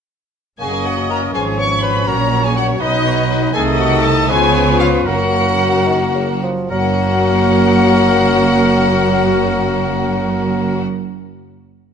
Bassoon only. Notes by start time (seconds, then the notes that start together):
0.60 A#3
1.34 F3
2.07 F#3
2.81 F#3
3.54 D#3
4.28 F3
5.07 F#3
5.87 D#3
6.15 C#3
6.43 F3
6.71 F#3